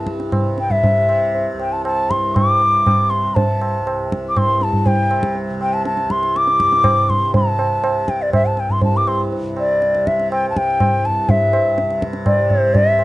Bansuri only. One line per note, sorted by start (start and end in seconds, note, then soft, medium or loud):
0.60 0.74 G5 medium
0.72 1.47 E5 medium
1.61 1.74 G5 medium
1.72 1.85 A5 medium
1.85 2.12 A5 medium
2.11 2.37 C6 medium
2.35 3.11 D6 loud
3.10 3.36 C6 medium
3.35 4.11 A5 medium
4.29 4.39 D6 medium
4.38 4.65 C6 loud
4.63 4.88 A5 medium
4.87 5.36 G5 medium
5.62 5.75 G5 medium
5.73 5.85 A5 medium
5.86 6.13 A5 medium
6.11 6.38 C6 medium
6.37 7.11 D6 loud
7.10 7.35 C6 medium
7.35 8.10 A5 medium
8.09 8.24 G5 medium
8.22 8.33 D5 medium
8.34 8.47 E5 medium
8.46 8.61 A5 medium
8.60 8.73 G5 medium
8.71 8.83 C6 medium
8.84 8.98 A5 medium
8.97 9.09 D6 medium
9.08 9.20 C6 medium
9.59 10.09 D5 medium
10.07 10.31 E5 medium
10.32 10.48 G5 medium
10.50 10.59 A5 medium
10.57 11.07 G5 medium
11.05 11.31 A5 medium
11.30 12.03 E5 medium
12.26 12.52 D5 medium
12.50 12.76 C5 medium
12.75 13.04 E5 loud